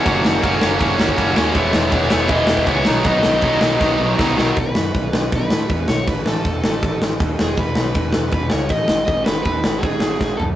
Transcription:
<<
  \new Staff \with { instrumentName = "Overdriven electric guitar" } { \time 4/4 \key b \major \tempo 4 = 159 fis''4 r2. | cis''4. cis''8 dis''4 cis''4 | dis''2. r8 ais'8 | \key b \mixolydian b'2 b'4. cis''8 |
b'8 a'2 r4 gis'8 | b'2 b'8 cis''8 dis''4 | dis''8 b'8 b'4 gis'4. a'8 | }
  \new Staff \with { instrumentName = "Distorted electric guitar" } { \time 4/4 \key b \major <fis ais cis' fis'>4 <fis ais cis' fis'>8 <fis ais cis' fis'>8 <fis ais cis' fis'>4 <fis ais cis' fis'>8 <fis ais cis' fis'>8 | <e gis b e'>4 <e gis b e'>8 <e gis b e'>8 <e gis b e'>4 <e gis b e'>8 <b, dis fis b dis'>8 | <b, dis fis b dis'>4 <b, dis fis b dis'>8 <b, dis fis b dis'>8 <b, dis fis b dis'>4 <b, dis fis b dis'>8 <b, dis fis b dis'>8 | \key b \mixolydian r1 |
r1 | r1 | r1 | }
  \new Staff \with { instrumentName = "Picked electric bass" } { \clef bass \time 4/4 \key b \major fis,,8 fis,,8 fis,,8 fis,,8 fis,,8 fis,,8 fis,,8 dis,8 | e,,8 e,,8 e,,8 e,,8 e,,8 e,,8 cis,8 b,,8 | b,,8 b,,8 b,,8 b,,8 b,,8 b,,8 b,,8 b,,8 | \key b \mixolydian b,,8 fis,8 b,,8 b,,8 b,,8 a,8 e,8 b,,8 |
a,,8 a,,8 e,,8 a,,8 a,,8 a,,8 dis,8 e,,8 | e,,8 b,,8 e,,8 e,,8 e,,8 cis,8 a,,8 gis,,8 | gis,,8 gis,,8 dis,8 gis,,8 gis,,8 gis,,8 gis,,8 fis,8 | }
  \new DrumStaff \with { instrumentName = "Drums" } \drummode { \time 4/4 <bd cymr>8 sn8 <bd cymr>8 sn8 <bd cymr>8 sn16 bd16 <bd cymr>8 sn8 | <bd cymr>8 sn8 <bd cymr>8 sn8 <bd cymr>8 sn16 bd16 <bd cymr>8 sn8 | <bd cymr>8 sn8 <bd cymr>8 sn8 <bd sn>4 <bd sn>8 sn8 | <cymc bd>8 sn8 <cymc bd>8 sn8 <cymc bd>8 sn8 <cymc bd>8 sn8 |
<cymc bd>8 sn8 <cymc bd>8 sn8 <cymc bd>8 sn8 <cymc bd>8 sn8 | <cymc bd>8 sn8 <cymc bd>8 sn8 <cymc bd>8 sn8 <cymc bd>8 sn8 | <cymc bd>8 sn8 <cymc bd>8 sn8 <cymc bd>8 sn8 <bd sn>8 tomfh8 | }
>>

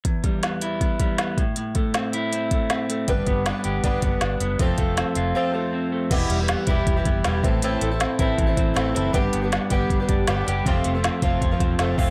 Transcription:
<<
  \new Staff \with { instrumentName = "Twelve-string acoustic guitar" } { \time 4/4 \key e \minor \tempo 4 = 158 r1 | r1 | <g b d' b'>4 <g b d' b'>4 <g b d' b'>8 <b d' b'>4. | <f a c' f' a'>2 <f a c' f' a'>8 <c' f' a'>4. |
<e, b, e g e' g'>8. <e g e' g'>8. <e g e' g'>8. <e g e' g'>8. <e g e' g'>8 <e c' e' a'>8 | <a, e c' e' a'>8. <c' e' a'>8. <e c' e' a'>8. <c' e' a'>8. <e c' e' a'>8 <e c' e' a'>8 | <g, d g b d' g'>8. <g b d' g'>8. <g b d' g'>8. <g b d' g'>8. <g b d' g'>8 <g b d' g'>8 | <f, c f a c' f'>8. <f a c' f'>8. <f a c' f'>8. <f a c' f'>8. <f a c' f'>8 <f a c' f'>8 | }
  \new Staff \with { instrumentName = "Clean electric guitar" } { \time 4/4 \key e \minor e,8 g8 b8 e'8 b8 g8 b8 a,8 | a,8 a8 c'8 e'8 c'8 a8 c'8 a8 | g,8 b8 d'8 g'8 d'8 b8 d'8 b8 | f,8 a8 c'8 f'8 c'8 a8 c'8 a8 |
e,8 g8 b8 e'8 e8 b8 g8 a,8 | a,8 a8 c'8 e'8 e8 c'8 a8 e'8 | g,8 b8 d'8 g'8 g8 d'8 b8 g'8 | f,8 a8 c'8 f'8 f8 c'8 a8 f'8 | }
  \new Staff \with { instrumentName = "Fingered electric bass" } { \clef bass \time 4/4 \key e \minor r1 | r1 | g,,8 g,,8. r16 g,,8 g,,8 fis,,8 g,,8 fis,,8 | f,,8 f,,8. r16 f,,8 r2 |
e,,8 e,,8. r16 e,,8 e,,8 fis,,8 e,,8 a,,8~ | a,,8 a,,8. r16 a,,8 a,,8 a,,8 a,,8 fis,,8 | g,,8 g,,8. r16 g,,8 g,,8 fis,,8 g,,8 fis,,8 | f,,8 f,,8. r16 f,,8 f,,8 e,,8 f,,8 f,,8 | }
  \new DrumStaff \with { instrumentName = "Drums" } \drummode { \time 4/4 <hh bd>8 <hh bd>8 <hh sn>8 hh8 <hh bd>8 <hh bd>8 <hh sn>8 <hh bd>8 | hh8 <hh bd>8 <hh sn>8 hh8 hh8 <hh bd>8 <hh sn>8 hh8 | <hh bd>8 <hh bd>8 <hh sn>8 hh8 <hh bd>8 <hh bd>8 <hh sn>8 hh8 | <hh bd>8 <hh bd>8 <hh sn>8 hh8 r4 r4 |
<cymc hh bd>8 hh8 <hh sn>8 <hh bd>8 <hh bd>8 <hh bd>8 <hh sn>8 <hh bd>8 | hh8 hh8 <hh sn>8 <hh bd>8 <hh bd>8 <hh bd>8 <hh sn>8 hh8 | <hh bd>8 hh8 <hh sn>8 <hh bd>8 <hh bd>8 <hh bd>8 <hh sn>8 hh8 | <hh bd>8 hh8 <hh sn>8 <hh bd>8 <hh bd>8 <hh bd sn>8 <hh sn>8 <hho bd>8 | }
>>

